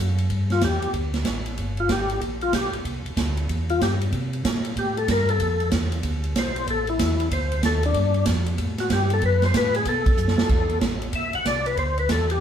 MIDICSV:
0, 0, Header, 1, 4, 480
1, 0, Start_track
1, 0, Tempo, 318640
1, 465, Time_signature, 4, 2, 24, 8
1, 18684, End_track
2, 0, Start_track
2, 0, Title_t, "Tonewheel organ"
2, 0, Program_c, 0, 16
2, 786, Note_on_c, 0, 65, 66
2, 947, Note_off_c, 0, 65, 0
2, 972, Note_on_c, 0, 67, 79
2, 1405, Note_off_c, 0, 67, 0
2, 2712, Note_on_c, 0, 65, 63
2, 2869, Note_off_c, 0, 65, 0
2, 2892, Note_on_c, 0, 67, 76
2, 3324, Note_off_c, 0, 67, 0
2, 3653, Note_on_c, 0, 65, 78
2, 3819, Note_off_c, 0, 65, 0
2, 3839, Note_on_c, 0, 67, 81
2, 4125, Note_off_c, 0, 67, 0
2, 5577, Note_on_c, 0, 65, 88
2, 5740, Note_off_c, 0, 65, 0
2, 5762, Note_on_c, 0, 67, 83
2, 5938, Note_off_c, 0, 67, 0
2, 7212, Note_on_c, 0, 67, 63
2, 7492, Note_off_c, 0, 67, 0
2, 7501, Note_on_c, 0, 69, 81
2, 7662, Note_off_c, 0, 69, 0
2, 7702, Note_on_c, 0, 70, 94
2, 7977, Note_off_c, 0, 70, 0
2, 7984, Note_on_c, 0, 69, 84
2, 8584, Note_off_c, 0, 69, 0
2, 9619, Note_on_c, 0, 72, 84
2, 10047, Note_off_c, 0, 72, 0
2, 10100, Note_on_c, 0, 69, 74
2, 10375, Note_off_c, 0, 69, 0
2, 10386, Note_on_c, 0, 64, 70
2, 10985, Note_off_c, 0, 64, 0
2, 11043, Note_on_c, 0, 72, 81
2, 11478, Note_off_c, 0, 72, 0
2, 11531, Note_on_c, 0, 69, 74
2, 11811, Note_off_c, 0, 69, 0
2, 11834, Note_on_c, 0, 62, 78
2, 12429, Note_off_c, 0, 62, 0
2, 13261, Note_on_c, 0, 66, 92
2, 13422, Note_off_c, 0, 66, 0
2, 13450, Note_on_c, 0, 67, 83
2, 13730, Note_off_c, 0, 67, 0
2, 13763, Note_on_c, 0, 69, 95
2, 13914, Note_off_c, 0, 69, 0
2, 13941, Note_on_c, 0, 71, 79
2, 14216, Note_off_c, 0, 71, 0
2, 14242, Note_on_c, 0, 72, 87
2, 14393, Note_off_c, 0, 72, 0
2, 14419, Note_on_c, 0, 71, 92
2, 14695, Note_off_c, 0, 71, 0
2, 14704, Note_on_c, 0, 68, 81
2, 14864, Note_off_c, 0, 68, 0
2, 14895, Note_on_c, 0, 69, 74
2, 16258, Note_off_c, 0, 69, 0
2, 16803, Note_on_c, 0, 76, 64
2, 17088, Note_off_c, 0, 76, 0
2, 17098, Note_on_c, 0, 78, 100
2, 17262, Note_off_c, 0, 78, 0
2, 17273, Note_on_c, 0, 74, 83
2, 17563, Note_off_c, 0, 74, 0
2, 17571, Note_on_c, 0, 71, 84
2, 17738, Note_off_c, 0, 71, 0
2, 17756, Note_on_c, 0, 72, 92
2, 18045, Note_off_c, 0, 72, 0
2, 18067, Note_on_c, 0, 71, 79
2, 18227, Note_off_c, 0, 71, 0
2, 18252, Note_on_c, 0, 69, 76
2, 18533, Note_off_c, 0, 69, 0
2, 18548, Note_on_c, 0, 67, 67
2, 18684, Note_off_c, 0, 67, 0
2, 18684, End_track
3, 0, Start_track
3, 0, Title_t, "Tonewheel organ"
3, 0, Program_c, 1, 16
3, 0, Note_on_c, 1, 42, 79
3, 443, Note_off_c, 1, 42, 0
3, 451, Note_on_c, 1, 43, 77
3, 922, Note_off_c, 1, 43, 0
3, 927, Note_on_c, 1, 40, 84
3, 1202, Note_off_c, 1, 40, 0
3, 1220, Note_on_c, 1, 40, 39
3, 1315, Note_off_c, 1, 40, 0
3, 1410, Note_on_c, 1, 38, 59
3, 1881, Note_off_c, 1, 38, 0
3, 1883, Note_on_c, 1, 33, 78
3, 2357, Note_off_c, 1, 33, 0
3, 2364, Note_on_c, 1, 31, 66
3, 2837, Note_off_c, 1, 31, 0
3, 2852, Note_on_c, 1, 32, 77
3, 3321, Note_off_c, 1, 32, 0
3, 3333, Note_on_c, 1, 34, 69
3, 3802, Note_off_c, 1, 34, 0
3, 3809, Note_on_c, 1, 35, 81
3, 4075, Note_off_c, 1, 35, 0
3, 4093, Note_on_c, 1, 35, 39
3, 4188, Note_off_c, 1, 35, 0
3, 4291, Note_on_c, 1, 36, 80
3, 4564, Note_off_c, 1, 36, 0
3, 4582, Note_on_c, 1, 36, 33
3, 4675, Note_off_c, 1, 36, 0
3, 4766, Note_on_c, 1, 38, 84
3, 5238, Note_off_c, 1, 38, 0
3, 5250, Note_on_c, 1, 40, 64
3, 5720, Note_off_c, 1, 40, 0
3, 5734, Note_on_c, 1, 43, 79
3, 6202, Note_off_c, 1, 43, 0
3, 6207, Note_on_c, 1, 48, 70
3, 6678, Note_off_c, 1, 48, 0
3, 6693, Note_on_c, 1, 46, 87
3, 7161, Note_off_c, 1, 46, 0
3, 7178, Note_on_c, 1, 45, 61
3, 7644, Note_off_c, 1, 45, 0
3, 7656, Note_on_c, 1, 43, 77
3, 8123, Note_off_c, 1, 43, 0
3, 8128, Note_on_c, 1, 41, 72
3, 8599, Note_off_c, 1, 41, 0
3, 8602, Note_on_c, 1, 40, 78
3, 9076, Note_off_c, 1, 40, 0
3, 9085, Note_on_c, 1, 38, 64
3, 9557, Note_off_c, 1, 38, 0
3, 9570, Note_on_c, 1, 35, 73
3, 10040, Note_off_c, 1, 35, 0
3, 10049, Note_on_c, 1, 33, 83
3, 10519, Note_off_c, 1, 33, 0
3, 10530, Note_on_c, 1, 40, 87
3, 11000, Note_off_c, 1, 40, 0
3, 11012, Note_on_c, 1, 38, 66
3, 11481, Note_off_c, 1, 38, 0
3, 11491, Note_on_c, 1, 39, 81
3, 11960, Note_off_c, 1, 39, 0
3, 11969, Note_on_c, 1, 43, 82
3, 12440, Note_off_c, 1, 43, 0
3, 12447, Note_on_c, 1, 41, 88
3, 12918, Note_off_c, 1, 41, 0
3, 12924, Note_on_c, 1, 45, 68
3, 13397, Note_off_c, 1, 45, 0
3, 13402, Note_on_c, 1, 43, 87
3, 13876, Note_off_c, 1, 43, 0
3, 13880, Note_on_c, 1, 42, 89
3, 14355, Note_off_c, 1, 42, 0
3, 14368, Note_on_c, 1, 45, 88
3, 14839, Note_off_c, 1, 45, 0
3, 14851, Note_on_c, 1, 47, 72
3, 15135, Note_off_c, 1, 47, 0
3, 15153, Note_on_c, 1, 47, 38
3, 15243, Note_off_c, 1, 47, 0
3, 15318, Note_on_c, 1, 42, 88
3, 15611, Note_off_c, 1, 42, 0
3, 15637, Note_on_c, 1, 42, 42
3, 15726, Note_off_c, 1, 42, 0
3, 15804, Note_on_c, 1, 40, 64
3, 16277, Note_off_c, 1, 40, 0
3, 16284, Note_on_c, 1, 33, 73
3, 16757, Note_off_c, 1, 33, 0
3, 16759, Note_on_c, 1, 35, 55
3, 17053, Note_off_c, 1, 35, 0
3, 17077, Note_on_c, 1, 35, 34
3, 17167, Note_off_c, 1, 35, 0
3, 17246, Note_on_c, 1, 36, 76
3, 17719, Note_off_c, 1, 36, 0
3, 17731, Note_on_c, 1, 38, 67
3, 18202, Note_off_c, 1, 38, 0
3, 18207, Note_on_c, 1, 40, 86
3, 18680, Note_off_c, 1, 40, 0
3, 18684, End_track
4, 0, Start_track
4, 0, Title_t, "Drums"
4, 277, Note_on_c, 9, 51, 45
4, 428, Note_off_c, 9, 51, 0
4, 450, Note_on_c, 9, 51, 46
4, 455, Note_on_c, 9, 36, 18
4, 601, Note_off_c, 9, 51, 0
4, 606, Note_off_c, 9, 36, 0
4, 754, Note_on_c, 9, 51, 32
4, 756, Note_on_c, 9, 38, 35
4, 905, Note_off_c, 9, 51, 0
4, 906, Note_off_c, 9, 38, 0
4, 925, Note_on_c, 9, 44, 58
4, 925, Note_on_c, 9, 51, 65
4, 926, Note_on_c, 9, 38, 63
4, 934, Note_on_c, 9, 36, 18
4, 1076, Note_off_c, 9, 44, 0
4, 1076, Note_off_c, 9, 51, 0
4, 1077, Note_off_c, 9, 38, 0
4, 1085, Note_off_c, 9, 36, 0
4, 1240, Note_on_c, 9, 51, 42
4, 1391, Note_off_c, 9, 51, 0
4, 1410, Note_on_c, 9, 51, 49
4, 1413, Note_on_c, 9, 36, 21
4, 1560, Note_off_c, 9, 51, 0
4, 1563, Note_off_c, 9, 36, 0
4, 1713, Note_on_c, 9, 51, 40
4, 1714, Note_on_c, 9, 38, 47
4, 1863, Note_off_c, 9, 51, 0
4, 1865, Note_off_c, 9, 38, 0
4, 1880, Note_on_c, 9, 44, 46
4, 1880, Note_on_c, 9, 51, 63
4, 1882, Note_on_c, 9, 38, 61
4, 1890, Note_on_c, 9, 36, 19
4, 2031, Note_off_c, 9, 44, 0
4, 2031, Note_off_c, 9, 51, 0
4, 2033, Note_off_c, 9, 38, 0
4, 2040, Note_off_c, 9, 36, 0
4, 2195, Note_on_c, 9, 51, 40
4, 2346, Note_off_c, 9, 51, 0
4, 2370, Note_on_c, 9, 36, 18
4, 2373, Note_on_c, 9, 51, 46
4, 2521, Note_off_c, 9, 36, 0
4, 2524, Note_off_c, 9, 51, 0
4, 2668, Note_on_c, 9, 51, 37
4, 2819, Note_off_c, 9, 51, 0
4, 2847, Note_on_c, 9, 44, 53
4, 2847, Note_on_c, 9, 51, 60
4, 2848, Note_on_c, 9, 38, 65
4, 2850, Note_on_c, 9, 36, 22
4, 2997, Note_off_c, 9, 44, 0
4, 2997, Note_off_c, 9, 51, 0
4, 2999, Note_off_c, 9, 38, 0
4, 3000, Note_off_c, 9, 36, 0
4, 3156, Note_on_c, 9, 51, 40
4, 3307, Note_off_c, 9, 51, 0
4, 3333, Note_on_c, 9, 36, 17
4, 3335, Note_on_c, 9, 51, 50
4, 3483, Note_off_c, 9, 36, 0
4, 3486, Note_off_c, 9, 51, 0
4, 3634, Note_on_c, 9, 51, 39
4, 3785, Note_off_c, 9, 51, 0
4, 3810, Note_on_c, 9, 44, 56
4, 3810, Note_on_c, 9, 51, 66
4, 3811, Note_on_c, 9, 36, 23
4, 3812, Note_on_c, 9, 38, 60
4, 3961, Note_off_c, 9, 36, 0
4, 3961, Note_off_c, 9, 44, 0
4, 3961, Note_off_c, 9, 51, 0
4, 3962, Note_off_c, 9, 38, 0
4, 4117, Note_on_c, 9, 51, 41
4, 4268, Note_off_c, 9, 51, 0
4, 4293, Note_on_c, 9, 36, 18
4, 4295, Note_on_c, 9, 51, 49
4, 4443, Note_off_c, 9, 36, 0
4, 4446, Note_off_c, 9, 51, 0
4, 4608, Note_on_c, 9, 51, 36
4, 4759, Note_off_c, 9, 51, 0
4, 4773, Note_on_c, 9, 36, 28
4, 4776, Note_on_c, 9, 44, 61
4, 4776, Note_on_c, 9, 51, 66
4, 4777, Note_on_c, 9, 38, 66
4, 4923, Note_off_c, 9, 36, 0
4, 4926, Note_off_c, 9, 44, 0
4, 4926, Note_off_c, 9, 51, 0
4, 4928, Note_off_c, 9, 38, 0
4, 5080, Note_on_c, 9, 51, 42
4, 5231, Note_off_c, 9, 51, 0
4, 5254, Note_on_c, 9, 36, 20
4, 5262, Note_on_c, 9, 51, 54
4, 5405, Note_off_c, 9, 36, 0
4, 5412, Note_off_c, 9, 51, 0
4, 5565, Note_on_c, 9, 51, 41
4, 5716, Note_off_c, 9, 51, 0
4, 5737, Note_on_c, 9, 36, 18
4, 5745, Note_on_c, 9, 44, 56
4, 5745, Note_on_c, 9, 51, 61
4, 5747, Note_on_c, 9, 38, 63
4, 5888, Note_off_c, 9, 36, 0
4, 5896, Note_off_c, 9, 44, 0
4, 5896, Note_off_c, 9, 51, 0
4, 5898, Note_off_c, 9, 38, 0
4, 6047, Note_on_c, 9, 51, 46
4, 6198, Note_off_c, 9, 51, 0
4, 6213, Note_on_c, 9, 51, 49
4, 6214, Note_on_c, 9, 36, 22
4, 6363, Note_off_c, 9, 51, 0
4, 6364, Note_off_c, 9, 36, 0
4, 6525, Note_on_c, 9, 51, 42
4, 6676, Note_off_c, 9, 51, 0
4, 6695, Note_on_c, 9, 36, 25
4, 6699, Note_on_c, 9, 44, 59
4, 6699, Note_on_c, 9, 51, 67
4, 6701, Note_on_c, 9, 38, 75
4, 6846, Note_off_c, 9, 36, 0
4, 6850, Note_off_c, 9, 44, 0
4, 6850, Note_off_c, 9, 51, 0
4, 6852, Note_off_c, 9, 38, 0
4, 6999, Note_on_c, 9, 51, 46
4, 7150, Note_off_c, 9, 51, 0
4, 7176, Note_on_c, 9, 36, 18
4, 7180, Note_on_c, 9, 51, 50
4, 7327, Note_off_c, 9, 36, 0
4, 7331, Note_off_c, 9, 51, 0
4, 7489, Note_on_c, 9, 51, 42
4, 7640, Note_off_c, 9, 51, 0
4, 7655, Note_on_c, 9, 44, 50
4, 7655, Note_on_c, 9, 51, 69
4, 7656, Note_on_c, 9, 36, 26
4, 7657, Note_on_c, 9, 38, 64
4, 7806, Note_off_c, 9, 36, 0
4, 7806, Note_off_c, 9, 44, 0
4, 7806, Note_off_c, 9, 51, 0
4, 7807, Note_off_c, 9, 38, 0
4, 7963, Note_on_c, 9, 51, 43
4, 8113, Note_off_c, 9, 51, 0
4, 8129, Note_on_c, 9, 51, 56
4, 8133, Note_on_c, 9, 36, 20
4, 8280, Note_off_c, 9, 51, 0
4, 8283, Note_off_c, 9, 36, 0
4, 8436, Note_on_c, 9, 51, 38
4, 8587, Note_off_c, 9, 51, 0
4, 8609, Note_on_c, 9, 44, 57
4, 8609, Note_on_c, 9, 51, 67
4, 8611, Note_on_c, 9, 38, 70
4, 8612, Note_on_c, 9, 36, 26
4, 8760, Note_off_c, 9, 44, 0
4, 8760, Note_off_c, 9, 51, 0
4, 8761, Note_off_c, 9, 38, 0
4, 8763, Note_off_c, 9, 36, 0
4, 8917, Note_on_c, 9, 51, 45
4, 9067, Note_off_c, 9, 51, 0
4, 9086, Note_on_c, 9, 51, 58
4, 9091, Note_on_c, 9, 36, 20
4, 9236, Note_off_c, 9, 51, 0
4, 9242, Note_off_c, 9, 36, 0
4, 9395, Note_on_c, 9, 51, 41
4, 9545, Note_off_c, 9, 51, 0
4, 9573, Note_on_c, 9, 36, 18
4, 9575, Note_on_c, 9, 44, 56
4, 9575, Note_on_c, 9, 51, 64
4, 9577, Note_on_c, 9, 38, 63
4, 9724, Note_off_c, 9, 36, 0
4, 9726, Note_off_c, 9, 44, 0
4, 9726, Note_off_c, 9, 51, 0
4, 9728, Note_off_c, 9, 38, 0
4, 9883, Note_on_c, 9, 51, 44
4, 10034, Note_off_c, 9, 51, 0
4, 10053, Note_on_c, 9, 36, 16
4, 10056, Note_on_c, 9, 51, 50
4, 10204, Note_off_c, 9, 36, 0
4, 10206, Note_off_c, 9, 51, 0
4, 10352, Note_on_c, 9, 51, 38
4, 10502, Note_off_c, 9, 51, 0
4, 10533, Note_on_c, 9, 36, 30
4, 10534, Note_on_c, 9, 44, 59
4, 10534, Note_on_c, 9, 51, 73
4, 10536, Note_on_c, 9, 38, 71
4, 10684, Note_off_c, 9, 36, 0
4, 10685, Note_off_c, 9, 44, 0
4, 10685, Note_off_c, 9, 51, 0
4, 10687, Note_off_c, 9, 38, 0
4, 10843, Note_on_c, 9, 51, 42
4, 10994, Note_off_c, 9, 51, 0
4, 11014, Note_on_c, 9, 36, 25
4, 11018, Note_on_c, 9, 51, 63
4, 11165, Note_off_c, 9, 36, 0
4, 11169, Note_off_c, 9, 51, 0
4, 11322, Note_on_c, 9, 51, 42
4, 11473, Note_off_c, 9, 51, 0
4, 11491, Note_on_c, 9, 36, 20
4, 11491, Note_on_c, 9, 44, 58
4, 11491, Note_on_c, 9, 51, 60
4, 11493, Note_on_c, 9, 38, 70
4, 11641, Note_off_c, 9, 36, 0
4, 11642, Note_off_c, 9, 44, 0
4, 11642, Note_off_c, 9, 51, 0
4, 11644, Note_off_c, 9, 38, 0
4, 11795, Note_on_c, 9, 51, 49
4, 11945, Note_off_c, 9, 51, 0
4, 11965, Note_on_c, 9, 51, 52
4, 11967, Note_on_c, 9, 36, 19
4, 12116, Note_off_c, 9, 51, 0
4, 12118, Note_off_c, 9, 36, 0
4, 12265, Note_on_c, 9, 51, 37
4, 12416, Note_off_c, 9, 51, 0
4, 12436, Note_on_c, 9, 44, 59
4, 12436, Note_on_c, 9, 51, 71
4, 12438, Note_on_c, 9, 38, 70
4, 12445, Note_on_c, 9, 36, 25
4, 12587, Note_off_c, 9, 44, 0
4, 12587, Note_off_c, 9, 51, 0
4, 12589, Note_off_c, 9, 38, 0
4, 12595, Note_off_c, 9, 36, 0
4, 12749, Note_on_c, 9, 51, 47
4, 12900, Note_off_c, 9, 51, 0
4, 12926, Note_on_c, 9, 51, 54
4, 12927, Note_on_c, 9, 36, 17
4, 13077, Note_off_c, 9, 51, 0
4, 13078, Note_off_c, 9, 36, 0
4, 13230, Note_on_c, 9, 51, 47
4, 13231, Note_on_c, 9, 38, 38
4, 13380, Note_off_c, 9, 51, 0
4, 13382, Note_off_c, 9, 38, 0
4, 13406, Note_on_c, 9, 44, 51
4, 13406, Note_on_c, 9, 51, 65
4, 13408, Note_on_c, 9, 36, 20
4, 13408, Note_on_c, 9, 38, 67
4, 13557, Note_off_c, 9, 44, 0
4, 13557, Note_off_c, 9, 51, 0
4, 13558, Note_off_c, 9, 38, 0
4, 13559, Note_off_c, 9, 36, 0
4, 13709, Note_on_c, 9, 51, 47
4, 13860, Note_off_c, 9, 51, 0
4, 13882, Note_on_c, 9, 51, 50
4, 13888, Note_on_c, 9, 36, 21
4, 14033, Note_off_c, 9, 51, 0
4, 14038, Note_off_c, 9, 36, 0
4, 14191, Note_on_c, 9, 51, 37
4, 14192, Note_on_c, 9, 38, 47
4, 14341, Note_off_c, 9, 51, 0
4, 14343, Note_off_c, 9, 38, 0
4, 14372, Note_on_c, 9, 36, 23
4, 14372, Note_on_c, 9, 44, 60
4, 14372, Note_on_c, 9, 51, 72
4, 14373, Note_on_c, 9, 38, 76
4, 14522, Note_off_c, 9, 36, 0
4, 14522, Note_off_c, 9, 44, 0
4, 14522, Note_off_c, 9, 51, 0
4, 14524, Note_off_c, 9, 38, 0
4, 14680, Note_on_c, 9, 51, 49
4, 14830, Note_off_c, 9, 51, 0
4, 14844, Note_on_c, 9, 51, 61
4, 14850, Note_on_c, 9, 36, 26
4, 14994, Note_off_c, 9, 51, 0
4, 15001, Note_off_c, 9, 36, 0
4, 15156, Note_on_c, 9, 36, 65
4, 15157, Note_on_c, 9, 51, 45
4, 15307, Note_off_c, 9, 36, 0
4, 15307, Note_off_c, 9, 51, 0
4, 15326, Note_on_c, 9, 44, 61
4, 15476, Note_off_c, 9, 44, 0
4, 15484, Note_on_c, 9, 38, 54
4, 15634, Note_off_c, 9, 38, 0
4, 15638, Note_on_c, 9, 38, 82
4, 15788, Note_off_c, 9, 38, 0
4, 15807, Note_on_c, 9, 49, 53
4, 15808, Note_on_c, 9, 36, 55
4, 15958, Note_off_c, 9, 36, 0
4, 15958, Note_off_c, 9, 49, 0
4, 16111, Note_on_c, 9, 51, 34
4, 16261, Note_off_c, 9, 51, 0
4, 16288, Note_on_c, 9, 36, 19
4, 16288, Note_on_c, 9, 44, 51
4, 16288, Note_on_c, 9, 51, 62
4, 16290, Note_on_c, 9, 38, 68
4, 16438, Note_off_c, 9, 36, 0
4, 16439, Note_off_c, 9, 44, 0
4, 16439, Note_off_c, 9, 51, 0
4, 16441, Note_off_c, 9, 38, 0
4, 16596, Note_on_c, 9, 51, 41
4, 16747, Note_off_c, 9, 51, 0
4, 16764, Note_on_c, 9, 51, 53
4, 16766, Note_on_c, 9, 36, 23
4, 16915, Note_off_c, 9, 51, 0
4, 16917, Note_off_c, 9, 36, 0
4, 17071, Note_on_c, 9, 51, 40
4, 17221, Note_off_c, 9, 51, 0
4, 17249, Note_on_c, 9, 36, 20
4, 17256, Note_on_c, 9, 44, 55
4, 17256, Note_on_c, 9, 51, 58
4, 17258, Note_on_c, 9, 38, 58
4, 17400, Note_off_c, 9, 36, 0
4, 17407, Note_off_c, 9, 44, 0
4, 17407, Note_off_c, 9, 51, 0
4, 17408, Note_off_c, 9, 38, 0
4, 17564, Note_on_c, 9, 51, 45
4, 17714, Note_off_c, 9, 51, 0
4, 17731, Note_on_c, 9, 36, 15
4, 17735, Note_on_c, 9, 51, 47
4, 17882, Note_off_c, 9, 36, 0
4, 17885, Note_off_c, 9, 51, 0
4, 18040, Note_on_c, 9, 51, 37
4, 18191, Note_off_c, 9, 51, 0
4, 18212, Note_on_c, 9, 44, 57
4, 18212, Note_on_c, 9, 51, 64
4, 18213, Note_on_c, 9, 36, 21
4, 18213, Note_on_c, 9, 38, 65
4, 18363, Note_off_c, 9, 36, 0
4, 18363, Note_off_c, 9, 44, 0
4, 18363, Note_off_c, 9, 51, 0
4, 18364, Note_off_c, 9, 38, 0
4, 18525, Note_on_c, 9, 51, 45
4, 18675, Note_off_c, 9, 51, 0
4, 18684, End_track
0, 0, End_of_file